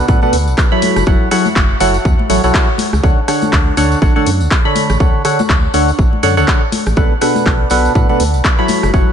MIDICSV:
0, 0, Header, 1, 4, 480
1, 0, Start_track
1, 0, Key_signature, 2, "major"
1, 0, Tempo, 491803
1, 1042, Time_signature, 4, 2, 24, 8
1, 8907, End_track
2, 0, Start_track
2, 0, Title_t, "Synth stab"
2, 0, Program_c, 0, 62
2, 81, Note_on_c, 0, 62, 84
2, 81, Note_on_c, 0, 69, 79
2, 81, Note_on_c, 0, 78, 101
2, 82, Note_on_c, 0, 71, 83
2, 199, Note_off_c, 0, 78, 0
2, 200, Note_off_c, 0, 62, 0
2, 200, Note_off_c, 0, 69, 0
2, 200, Note_off_c, 0, 71, 0
2, 221, Note_on_c, 0, 47, 94
2, 221, Note_on_c, 0, 62, 85
2, 221, Note_on_c, 0, 69, 89
2, 221, Note_on_c, 0, 71, 84
2, 221, Note_on_c, 0, 78, 104
2, 356, Note_off_c, 0, 47, 0
2, 356, Note_off_c, 0, 62, 0
2, 356, Note_off_c, 0, 69, 0
2, 356, Note_off_c, 0, 71, 0
2, 356, Note_off_c, 0, 78, 0
2, 701, Note_on_c, 0, 54, 86
2, 701, Note_on_c, 0, 64, 80
2, 701, Note_on_c, 0, 69, 77
2, 701, Note_on_c, 0, 73, 76
2, 701, Note_on_c, 0, 83, 97
2, 1018, Note_off_c, 0, 54, 0
2, 1018, Note_off_c, 0, 64, 0
2, 1018, Note_off_c, 0, 69, 0
2, 1018, Note_off_c, 0, 73, 0
2, 1018, Note_off_c, 0, 83, 0
2, 1042, Note_on_c, 0, 54, 80
2, 1042, Note_on_c, 0, 64, 73
2, 1042, Note_on_c, 0, 69, 70
2, 1042, Note_on_c, 0, 73, 67
2, 1042, Note_on_c, 0, 78, 85
2, 1258, Note_off_c, 0, 54, 0
2, 1258, Note_off_c, 0, 64, 0
2, 1258, Note_off_c, 0, 69, 0
2, 1258, Note_off_c, 0, 73, 0
2, 1258, Note_off_c, 0, 78, 0
2, 1282, Note_on_c, 0, 54, 93
2, 1282, Note_on_c, 0, 64, 85
2, 1282, Note_on_c, 0, 69, 84
2, 1282, Note_on_c, 0, 73, 83
2, 1282, Note_on_c, 0, 78, 103
2, 1445, Note_off_c, 0, 54, 0
2, 1445, Note_off_c, 0, 64, 0
2, 1445, Note_off_c, 0, 69, 0
2, 1445, Note_off_c, 0, 73, 0
2, 1445, Note_off_c, 0, 78, 0
2, 1761, Note_on_c, 0, 54, 99
2, 1761, Note_on_c, 0, 64, 91
2, 1761, Note_on_c, 0, 69, 89
2, 1761, Note_on_c, 0, 73, 88
2, 1761, Note_on_c, 0, 78, 112
2, 1924, Note_off_c, 0, 73, 0
2, 1925, Note_off_c, 0, 54, 0
2, 1925, Note_off_c, 0, 64, 0
2, 1925, Note_off_c, 0, 69, 0
2, 1925, Note_off_c, 0, 78, 0
2, 2241, Note_on_c, 0, 54, 99
2, 2241, Note_on_c, 0, 64, 90
2, 2241, Note_on_c, 0, 69, 90
2, 2241, Note_on_c, 0, 73, 89
2, 2241, Note_on_c, 0, 78, 106
2, 2359, Note_off_c, 0, 54, 0
2, 2359, Note_off_c, 0, 69, 0
2, 2359, Note_off_c, 0, 78, 0
2, 2360, Note_off_c, 0, 64, 0
2, 2360, Note_off_c, 0, 73, 0
2, 2380, Note_on_c, 0, 54, 99
2, 2380, Note_on_c, 0, 64, 93
2, 2380, Note_on_c, 0, 69, 91
2, 2380, Note_on_c, 0, 73, 90
2, 2380, Note_on_c, 0, 78, 108
2, 2618, Note_off_c, 0, 64, 0
2, 2618, Note_off_c, 0, 73, 0
2, 2619, Note_off_c, 0, 54, 0
2, 2619, Note_off_c, 0, 69, 0
2, 2619, Note_off_c, 0, 78, 0
2, 2961, Note_on_c, 0, 73, 70
2, 2961, Note_on_c, 0, 78, 80
2, 2962, Note_on_c, 0, 50, 74
2, 2962, Note_on_c, 0, 62, 70
2, 2962, Note_on_c, 0, 69, 70
2, 3125, Note_off_c, 0, 50, 0
2, 3125, Note_off_c, 0, 62, 0
2, 3125, Note_off_c, 0, 69, 0
2, 3125, Note_off_c, 0, 73, 0
2, 3125, Note_off_c, 0, 78, 0
2, 3202, Note_on_c, 0, 50, 81
2, 3202, Note_on_c, 0, 62, 79
2, 3202, Note_on_c, 0, 69, 77
2, 3202, Note_on_c, 0, 73, 76
2, 3202, Note_on_c, 0, 78, 91
2, 3658, Note_off_c, 0, 50, 0
2, 3658, Note_off_c, 0, 62, 0
2, 3658, Note_off_c, 0, 69, 0
2, 3658, Note_off_c, 0, 73, 0
2, 3658, Note_off_c, 0, 78, 0
2, 3683, Note_on_c, 0, 50, 97
2, 3683, Note_on_c, 0, 62, 88
2, 3683, Note_on_c, 0, 69, 89
2, 3683, Note_on_c, 0, 73, 88
2, 3683, Note_on_c, 0, 78, 105
2, 3898, Note_off_c, 0, 50, 0
2, 3898, Note_off_c, 0, 62, 0
2, 3898, Note_off_c, 0, 69, 0
2, 3898, Note_off_c, 0, 73, 0
2, 3898, Note_off_c, 0, 78, 0
2, 3922, Note_on_c, 0, 50, 91
2, 3922, Note_on_c, 0, 62, 85
2, 3922, Note_on_c, 0, 69, 81
2, 3922, Note_on_c, 0, 73, 83
2, 3922, Note_on_c, 0, 78, 97
2, 4040, Note_off_c, 0, 50, 0
2, 4040, Note_off_c, 0, 62, 0
2, 4040, Note_off_c, 0, 69, 0
2, 4040, Note_off_c, 0, 73, 0
2, 4040, Note_off_c, 0, 78, 0
2, 4060, Note_on_c, 0, 50, 93
2, 4060, Note_on_c, 0, 73, 87
2, 4060, Note_on_c, 0, 78, 101
2, 4061, Note_on_c, 0, 62, 85
2, 4061, Note_on_c, 0, 69, 88
2, 4195, Note_off_c, 0, 50, 0
2, 4195, Note_off_c, 0, 62, 0
2, 4195, Note_off_c, 0, 69, 0
2, 4195, Note_off_c, 0, 73, 0
2, 4195, Note_off_c, 0, 78, 0
2, 4541, Note_on_c, 0, 50, 87
2, 4541, Note_on_c, 0, 62, 77
2, 4541, Note_on_c, 0, 69, 81
2, 4541, Note_on_c, 0, 73, 81
2, 4541, Note_on_c, 0, 83, 97
2, 4858, Note_off_c, 0, 50, 0
2, 4858, Note_off_c, 0, 62, 0
2, 4858, Note_off_c, 0, 69, 0
2, 4858, Note_off_c, 0, 73, 0
2, 4858, Note_off_c, 0, 83, 0
2, 4882, Note_on_c, 0, 50, 75
2, 4882, Note_on_c, 0, 62, 70
2, 4882, Note_on_c, 0, 69, 73
2, 4882, Note_on_c, 0, 73, 70
2, 4882, Note_on_c, 0, 78, 83
2, 5098, Note_off_c, 0, 50, 0
2, 5098, Note_off_c, 0, 62, 0
2, 5098, Note_off_c, 0, 69, 0
2, 5098, Note_off_c, 0, 73, 0
2, 5098, Note_off_c, 0, 78, 0
2, 5121, Note_on_c, 0, 62, 88
2, 5121, Note_on_c, 0, 69, 85
2, 5121, Note_on_c, 0, 73, 87
2, 5122, Note_on_c, 0, 50, 94
2, 5122, Note_on_c, 0, 78, 107
2, 5285, Note_off_c, 0, 50, 0
2, 5285, Note_off_c, 0, 62, 0
2, 5285, Note_off_c, 0, 69, 0
2, 5285, Note_off_c, 0, 73, 0
2, 5285, Note_off_c, 0, 78, 0
2, 5601, Note_on_c, 0, 50, 100
2, 5601, Note_on_c, 0, 62, 93
2, 5601, Note_on_c, 0, 78, 109
2, 5602, Note_on_c, 0, 69, 90
2, 5602, Note_on_c, 0, 73, 92
2, 5765, Note_off_c, 0, 50, 0
2, 5765, Note_off_c, 0, 62, 0
2, 5765, Note_off_c, 0, 69, 0
2, 5765, Note_off_c, 0, 73, 0
2, 5765, Note_off_c, 0, 78, 0
2, 6081, Note_on_c, 0, 50, 94
2, 6081, Note_on_c, 0, 62, 90
2, 6081, Note_on_c, 0, 69, 90
2, 6081, Note_on_c, 0, 78, 108
2, 6082, Note_on_c, 0, 73, 93
2, 6199, Note_off_c, 0, 62, 0
2, 6200, Note_off_c, 0, 50, 0
2, 6200, Note_off_c, 0, 69, 0
2, 6200, Note_off_c, 0, 73, 0
2, 6200, Note_off_c, 0, 78, 0
2, 6220, Note_on_c, 0, 50, 99
2, 6220, Note_on_c, 0, 62, 93
2, 6220, Note_on_c, 0, 69, 95
2, 6220, Note_on_c, 0, 73, 89
2, 6220, Note_on_c, 0, 78, 111
2, 6458, Note_off_c, 0, 50, 0
2, 6458, Note_off_c, 0, 62, 0
2, 6458, Note_off_c, 0, 69, 0
2, 6458, Note_off_c, 0, 73, 0
2, 6458, Note_off_c, 0, 78, 0
2, 6802, Note_on_c, 0, 47, 77
2, 6802, Note_on_c, 0, 62, 70
2, 6802, Note_on_c, 0, 69, 73
2, 6802, Note_on_c, 0, 71, 73
2, 6802, Note_on_c, 0, 78, 82
2, 6965, Note_off_c, 0, 47, 0
2, 6965, Note_off_c, 0, 62, 0
2, 6965, Note_off_c, 0, 69, 0
2, 6965, Note_off_c, 0, 71, 0
2, 6965, Note_off_c, 0, 78, 0
2, 7041, Note_on_c, 0, 47, 83
2, 7041, Note_on_c, 0, 62, 76
2, 7041, Note_on_c, 0, 69, 75
2, 7041, Note_on_c, 0, 71, 73
2, 7041, Note_on_c, 0, 78, 89
2, 7497, Note_off_c, 0, 47, 0
2, 7497, Note_off_c, 0, 62, 0
2, 7497, Note_off_c, 0, 69, 0
2, 7497, Note_off_c, 0, 71, 0
2, 7497, Note_off_c, 0, 78, 0
2, 7521, Note_on_c, 0, 62, 90
2, 7521, Note_on_c, 0, 71, 91
2, 7521, Note_on_c, 0, 78, 112
2, 7522, Note_on_c, 0, 47, 97
2, 7522, Note_on_c, 0, 69, 92
2, 7737, Note_off_c, 0, 62, 0
2, 7737, Note_off_c, 0, 71, 0
2, 7737, Note_off_c, 0, 78, 0
2, 7738, Note_off_c, 0, 47, 0
2, 7738, Note_off_c, 0, 69, 0
2, 7762, Note_on_c, 0, 62, 85
2, 7762, Note_on_c, 0, 69, 83
2, 7762, Note_on_c, 0, 71, 85
2, 7762, Note_on_c, 0, 78, 104
2, 7880, Note_off_c, 0, 62, 0
2, 7880, Note_off_c, 0, 69, 0
2, 7880, Note_off_c, 0, 71, 0
2, 7880, Note_off_c, 0, 78, 0
2, 7900, Note_on_c, 0, 47, 91
2, 7900, Note_on_c, 0, 69, 88
2, 7900, Note_on_c, 0, 71, 85
2, 7900, Note_on_c, 0, 78, 104
2, 7901, Note_on_c, 0, 62, 82
2, 8035, Note_off_c, 0, 47, 0
2, 8035, Note_off_c, 0, 62, 0
2, 8035, Note_off_c, 0, 69, 0
2, 8035, Note_off_c, 0, 71, 0
2, 8035, Note_off_c, 0, 78, 0
2, 8380, Note_on_c, 0, 54, 86
2, 8380, Note_on_c, 0, 64, 82
2, 8380, Note_on_c, 0, 69, 80
2, 8380, Note_on_c, 0, 73, 79
2, 8381, Note_on_c, 0, 83, 97
2, 8697, Note_off_c, 0, 69, 0
2, 8697, Note_off_c, 0, 73, 0
2, 8698, Note_off_c, 0, 54, 0
2, 8698, Note_off_c, 0, 64, 0
2, 8698, Note_off_c, 0, 83, 0
2, 8722, Note_on_c, 0, 69, 70
2, 8722, Note_on_c, 0, 78, 85
2, 8723, Note_on_c, 0, 54, 74
2, 8723, Note_on_c, 0, 64, 71
2, 8723, Note_on_c, 0, 73, 71
2, 8907, Note_off_c, 0, 54, 0
2, 8907, Note_off_c, 0, 64, 0
2, 8907, Note_off_c, 0, 69, 0
2, 8907, Note_off_c, 0, 73, 0
2, 8907, Note_off_c, 0, 78, 0
2, 8907, End_track
3, 0, Start_track
3, 0, Title_t, "FM bass"
3, 0, Program_c, 1, 39
3, 82, Note_on_c, 1, 45, 100
3, 177, Note_off_c, 1, 45, 0
3, 322, Note_on_c, 1, 38, 102
3, 461, Note_on_c, 1, 35, 102
3, 475, Note_off_c, 1, 38, 0
3, 530, Note_off_c, 1, 35, 0
3, 940, Note_on_c, 1, 30, 91
3, 1010, Note_off_c, 1, 30, 0
3, 1043, Note_on_c, 1, 30, 100
3, 1137, Note_off_c, 1, 30, 0
3, 1522, Note_on_c, 1, 30, 92
3, 1698, Note_off_c, 1, 30, 0
3, 1762, Note_on_c, 1, 30, 84
3, 1938, Note_off_c, 1, 30, 0
3, 2002, Note_on_c, 1, 40, 101
3, 2097, Note_off_c, 1, 40, 0
3, 2241, Note_on_c, 1, 33, 97
3, 2337, Note_off_c, 1, 33, 0
3, 2380, Note_on_c, 1, 35, 82
3, 2450, Note_off_c, 1, 35, 0
3, 2860, Note_on_c, 1, 37, 82
3, 2930, Note_off_c, 1, 37, 0
3, 2962, Note_on_c, 1, 38, 99
3, 3057, Note_off_c, 1, 38, 0
3, 3442, Note_on_c, 1, 38, 94
3, 3618, Note_off_c, 1, 38, 0
3, 3681, Note_on_c, 1, 38, 80
3, 3858, Note_off_c, 1, 38, 0
3, 3922, Note_on_c, 1, 33, 101
3, 4017, Note_off_c, 1, 33, 0
3, 4162, Note_on_c, 1, 42, 98
3, 4300, Note_on_c, 1, 38, 103
3, 4315, Note_off_c, 1, 42, 0
3, 4370, Note_off_c, 1, 38, 0
3, 4780, Note_on_c, 1, 33, 96
3, 4850, Note_off_c, 1, 33, 0
3, 4882, Note_on_c, 1, 38, 102
3, 4977, Note_off_c, 1, 38, 0
3, 5362, Note_on_c, 1, 38, 97
3, 5538, Note_off_c, 1, 38, 0
3, 5602, Note_on_c, 1, 38, 81
3, 5778, Note_off_c, 1, 38, 0
3, 5843, Note_on_c, 1, 33, 100
3, 5937, Note_off_c, 1, 33, 0
3, 6082, Note_on_c, 1, 42, 100
3, 6221, Note_on_c, 1, 38, 103
3, 6236, Note_off_c, 1, 42, 0
3, 6290, Note_off_c, 1, 38, 0
3, 6701, Note_on_c, 1, 33, 92
3, 6770, Note_off_c, 1, 33, 0
3, 6802, Note_on_c, 1, 35, 97
3, 6897, Note_off_c, 1, 35, 0
3, 7282, Note_on_c, 1, 35, 90
3, 7458, Note_off_c, 1, 35, 0
3, 7522, Note_on_c, 1, 35, 83
3, 7698, Note_off_c, 1, 35, 0
3, 7762, Note_on_c, 1, 45, 102
3, 7857, Note_off_c, 1, 45, 0
3, 8002, Note_on_c, 1, 38, 100
3, 8141, Note_on_c, 1, 35, 101
3, 8156, Note_off_c, 1, 38, 0
3, 8210, Note_off_c, 1, 35, 0
3, 8621, Note_on_c, 1, 30, 94
3, 8690, Note_off_c, 1, 30, 0
3, 8722, Note_on_c, 1, 30, 99
3, 8817, Note_off_c, 1, 30, 0
3, 8907, End_track
4, 0, Start_track
4, 0, Title_t, "Drums"
4, 79, Note_on_c, 9, 54, 44
4, 83, Note_on_c, 9, 36, 127
4, 177, Note_off_c, 9, 54, 0
4, 180, Note_off_c, 9, 36, 0
4, 214, Note_on_c, 9, 63, 66
4, 312, Note_off_c, 9, 63, 0
4, 319, Note_on_c, 9, 54, 104
4, 322, Note_on_c, 9, 46, 114
4, 417, Note_off_c, 9, 54, 0
4, 420, Note_off_c, 9, 46, 0
4, 463, Note_on_c, 9, 54, 53
4, 557, Note_off_c, 9, 54, 0
4, 557, Note_on_c, 9, 54, 45
4, 563, Note_on_c, 9, 36, 109
4, 563, Note_on_c, 9, 37, 66
4, 565, Note_on_c, 9, 39, 122
4, 654, Note_off_c, 9, 54, 0
4, 660, Note_off_c, 9, 36, 0
4, 660, Note_off_c, 9, 37, 0
4, 663, Note_off_c, 9, 39, 0
4, 800, Note_on_c, 9, 54, 101
4, 802, Note_on_c, 9, 46, 121
4, 806, Note_on_c, 9, 63, 93
4, 898, Note_off_c, 9, 54, 0
4, 899, Note_off_c, 9, 46, 0
4, 904, Note_off_c, 9, 63, 0
4, 940, Note_on_c, 9, 54, 55
4, 941, Note_on_c, 9, 37, 81
4, 1036, Note_off_c, 9, 54, 0
4, 1036, Note_on_c, 9, 54, 38
4, 1038, Note_off_c, 9, 37, 0
4, 1042, Note_on_c, 9, 36, 126
4, 1134, Note_off_c, 9, 54, 0
4, 1140, Note_off_c, 9, 36, 0
4, 1281, Note_on_c, 9, 54, 92
4, 1282, Note_on_c, 9, 37, 75
4, 1282, Note_on_c, 9, 46, 116
4, 1378, Note_off_c, 9, 54, 0
4, 1380, Note_off_c, 9, 37, 0
4, 1380, Note_off_c, 9, 46, 0
4, 1419, Note_on_c, 9, 63, 91
4, 1423, Note_on_c, 9, 54, 53
4, 1516, Note_off_c, 9, 63, 0
4, 1521, Note_off_c, 9, 54, 0
4, 1522, Note_on_c, 9, 36, 113
4, 1524, Note_on_c, 9, 39, 115
4, 1524, Note_on_c, 9, 54, 42
4, 1620, Note_off_c, 9, 36, 0
4, 1621, Note_off_c, 9, 54, 0
4, 1622, Note_off_c, 9, 39, 0
4, 1759, Note_on_c, 9, 54, 105
4, 1762, Note_on_c, 9, 46, 110
4, 1857, Note_off_c, 9, 54, 0
4, 1860, Note_off_c, 9, 46, 0
4, 1894, Note_on_c, 9, 54, 57
4, 1992, Note_off_c, 9, 54, 0
4, 2000, Note_on_c, 9, 54, 42
4, 2002, Note_on_c, 9, 36, 120
4, 2098, Note_off_c, 9, 54, 0
4, 2100, Note_off_c, 9, 36, 0
4, 2140, Note_on_c, 9, 63, 62
4, 2238, Note_off_c, 9, 63, 0
4, 2242, Note_on_c, 9, 46, 116
4, 2250, Note_on_c, 9, 54, 94
4, 2339, Note_off_c, 9, 46, 0
4, 2347, Note_off_c, 9, 54, 0
4, 2377, Note_on_c, 9, 54, 58
4, 2474, Note_off_c, 9, 54, 0
4, 2482, Note_on_c, 9, 36, 108
4, 2482, Note_on_c, 9, 37, 61
4, 2483, Note_on_c, 9, 54, 43
4, 2485, Note_on_c, 9, 39, 119
4, 2580, Note_off_c, 9, 36, 0
4, 2580, Note_off_c, 9, 37, 0
4, 2580, Note_off_c, 9, 54, 0
4, 2583, Note_off_c, 9, 39, 0
4, 2714, Note_on_c, 9, 63, 91
4, 2721, Note_on_c, 9, 54, 85
4, 2722, Note_on_c, 9, 46, 111
4, 2812, Note_off_c, 9, 63, 0
4, 2819, Note_off_c, 9, 54, 0
4, 2820, Note_off_c, 9, 46, 0
4, 2861, Note_on_c, 9, 37, 80
4, 2869, Note_on_c, 9, 54, 53
4, 2958, Note_off_c, 9, 37, 0
4, 2962, Note_on_c, 9, 36, 124
4, 2965, Note_off_c, 9, 54, 0
4, 2965, Note_on_c, 9, 54, 39
4, 3060, Note_off_c, 9, 36, 0
4, 3063, Note_off_c, 9, 54, 0
4, 3202, Note_on_c, 9, 37, 81
4, 3202, Note_on_c, 9, 46, 106
4, 3208, Note_on_c, 9, 54, 98
4, 3300, Note_off_c, 9, 37, 0
4, 3300, Note_off_c, 9, 46, 0
4, 3305, Note_off_c, 9, 54, 0
4, 3335, Note_on_c, 9, 54, 49
4, 3341, Note_on_c, 9, 63, 96
4, 3432, Note_off_c, 9, 54, 0
4, 3439, Note_off_c, 9, 63, 0
4, 3442, Note_on_c, 9, 36, 108
4, 3443, Note_on_c, 9, 54, 38
4, 3444, Note_on_c, 9, 39, 112
4, 3540, Note_off_c, 9, 36, 0
4, 3541, Note_off_c, 9, 54, 0
4, 3542, Note_off_c, 9, 39, 0
4, 3680, Note_on_c, 9, 54, 99
4, 3682, Note_on_c, 9, 46, 110
4, 3777, Note_off_c, 9, 54, 0
4, 3780, Note_off_c, 9, 46, 0
4, 3822, Note_on_c, 9, 54, 54
4, 3920, Note_off_c, 9, 54, 0
4, 3922, Note_on_c, 9, 36, 119
4, 3926, Note_on_c, 9, 54, 40
4, 4020, Note_off_c, 9, 36, 0
4, 4024, Note_off_c, 9, 54, 0
4, 4063, Note_on_c, 9, 63, 68
4, 4161, Note_off_c, 9, 63, 0
4, 4162, Note_on_c, 9, 46, 111
4, 4164, Note_on_c, 9, 54, 96
4, 4260, Note_off_c, 9, 46, 0
4, 4262, Note_off_c, 9, 54, 0
4, 4299, Note_on_c, 9, 54, 53
4, 4396, Note_off_c, 9, 54, 0
4, 4400, Note_on_c, 9, 54, 40
4, 4402, Note_on_c, 9, 36, 101
4, 4402, Note_on_c, 9, 37, 63
4, 4404, Note_on_c, 9, 39, 114
4, 4498, Note_off_c, 9, 54, 0
4, 4500, Note_off_c, 9, 36, 0
4, 4500, Note_off_c, 9, 37, 0
4, 4502, Note_off_c, 9, 39, 0
4, 4639, Note_on_c, 9, 63, 87
4, 4642, Note_on_c, 9, 46, 107
4, 4642, Note_on_c, 9, 54, 92
4, 4737, Note_off_c, 9, 63, 0
4, 4739, Note_off_c, 9, 54, 0
4, 4740, Note_off_c, 9, 46, 0
4, 4779, Note_on_c, 9, 54, 55
4, 4781, Note_on_c, 9, 37, 81
4, 4876, Note_off_c, 9, 54, 0
4, 4878, Note_off_c, 9, 37, 0
4, 4882, Note_on_c, 9, 36, 116
4, 4882, Note_on_c, 9, 54, 36
4, 4979, Note_off_c, 9, 54, 0
4, 4980, Note_off_c, 9, 36, 0
4, 5121, Note_on_c, 9, 54, 89
4, 5122, Note_on_c, 9, 37, 81
4, 5122, Note_on_c, 9, 46, 105
4, 5218, Note_off_c, 9, 54, 0
4, 5220, Note_off_c, 9, 37, 0
4, 5220, Note_off_c, 9, 46, 0
4, 5260, Note_on_c, 9, 54, 50
4, 5269, Note_on_c, 9, 63, 93
4, 5358, Note_off_c, 9, 54, 0
4, 5362, Note_on_c, 9, 36, 105
4, 5365, Note_on_c, 9, 39, 114
4, 5366, Note_off_c, 9, 63, 0
4, 5460, Note_off_c, 9, 36, 0
4, 5462, Note_off_c, 9, 39, 0
4, 5598, Note_on_c, 9, 54, 93
4, 5603, Note_on_c, 9, 46, 104
4, 5696, Note_off_c, 9, 54, 0
4, 5700, Note_off_c, 9, 46, 0
4, 5742, Note_on_c, 9, 54, 49
4, 5840, Note_off_c, 9, 54, 0
4, 5842, Note_on_c, 9, 36, 112
4, 5842, Note_on_c, 9, 54, 37
4, 5940, Note_off_c, 9, 36, 0
4, 5940, Note_off_c, 9, 54, 0
4, 5982, Note_on_c, 9, 63, 63
4, 6079, Note_on_c, 9, 54, 93
4, 6080, Note_off_c, 9, 63, 0
4, 6082, Note_on_c, 9, 46, 109
4, 6177, Note_off_c, 9, 54, 0
4, 6180, Note_off_c, 9, 46, 0
4, 6218, Note_on_c, 9, 54, 53
4, 6316, Note_off_c, 9, 54, 0
4, 6322, Note_on_c, 9, 36, 104
4, 6322, Note_on_c, 9, 37, 64
4, 6325, Note_on_c, 9, 39, 115
4, 6329, Note_on_c, 9, 54, 42
4, 6420, Note_off_c, 9, 36, 0
4, 6420, Note_off_c, 9, 37, 0
4, 6422, Note_off_c, 9, 39, 0
4, 6427, Note_off_c, 9, 54, 0
4, 6561, Note_on_c, 9, 63, 90
4, 6562, Note_on_c, 9, 46, 110
4, 6566, Note_on_c, 9, 54, 91
4, 6658, Note_off_c, 9, 63, 0
4, 6660, Note_off_c, 9, 46, 0
4, 6663, Note_off_c, 9, 54, 0
4, 6698, Note_on_c, 9, 54, 47
4, 6702, Note_on_c, 9, 37, 81
4, 6795, Note_off_c, 9, 54, 0
4, 6797, Note_on_c, 9, 54, 42
4, 6799, Note_off_c, 9, 37, 0
4, 6802, Note_on_c, 9, 36, 119
4, 6895, Note_off_c, 9, 54, 0
4, 6900, Note_off_c, 9, 36, 0
4, 7040, Note_on_c, 9, 54, 91
4, 7043, Note_on_c, 9, 37, 84
4, 7043, Note_on_c, 9, 46, 107
4, 7137, Note_off_c, 9, 54, 0
4, 7140, Note_off_c, 9, 37, 0
4, 7140, Note_off_c, 9, 46, 0
4, 7176, Note_on_c, 9, 63, 83
4, 7183, Note_on_c, 9, 54, 54
4, 7273, Note_off_c, 9, 63, 0
4, 7281, Note_off_c, 9, 54, 0
4, 7282, Note_on_c, 9, 36, 103
4, 7282, Note_on_c, 9, 54, 36
4, 7285, Note_on_c, 9, 39, 114
4, 7380, Note_off_c, 9, 36, 0
4, 7380, Note_off_c, 9, 54, 0
4, 7383, Note_off_c, 9, 39, 0
4, 7514, Note_on_c, 9, 54, 84
4, 7523, Note_on_c, 9, 46, 100
4, 7611, Note_off_c, 9, 54, 0
4, 7620, Note_off_c, 9, 46, 0
4, 7662, Note_on_c, 9, 54, 46
4, 7759, Note_off_c, 9, 54, 0
4, 7762, Note_on_c, 9, 36, 117
4, 7765, Note_on_c, 9, 54, 39
4, 7860, Note_off_c, 9, 36, 0
4, 7862, Note_off_c, 9, 54, 0
4, 7899, Note_on_c, 9, 63, 65
4, 7996, Note_off_c, 9, 63, 0
4, 8001, Note_on_c, 9, 54, 93
4, 8002, Note_on_c, 9, 46, 101
4, 8098, Note_off_c, 9, 54, 0
4, 8100, Note_off_c, 9, 46, 0
4, 8138, Note_on_c, 9, 54, 54
4, 8236, Note_off_c, 9, 54, 0
4, 8240, Note_on_c, 9, 54, 43
4, 8242, Note_on_c, 9, 36, 99
4, 8242, Note_on_c, 9, 37, 69
4, 8245, Note_on_c, 9, 39, 119
4, 8338, Note_off_c, 9, 54, 0
4, 8340, Note_off_c, 9, 36, 0
4, 8340, Note_off_c, 9, 37, 0
4, 8342, Note_off_c, 9, 39, 0
4, 8474, Note_on_c, 9, 54, 99
4, 8477, Note_on_c, 9, 63, 98
4, 8482, Note_on_c, 9, 46, 104
4, 8571, Note_off_c, 9, 54, 0
4, 8575, Note_off_c, 9, 63, 0
4, 8580, Note_off_c, 9, 46, 0
4, 8620, Note_on_c, 9, 37, 86
4, 8625, Note_on_c, 9, 54, 50
4, 8718, Note_off_c, 9, 37, 0
4, 8722, Note_off_c, 9, 54, 0
4, 8722, Note_on_c, 9, 36, 115
4, 8723, Note_on_c, 9, 54, 38
4, 8819, Note_off_c, 9, 36, 0
4, 8821, Note_off_c, 9, 54, 0
4, 8907, End_track
0, 0, End_of_file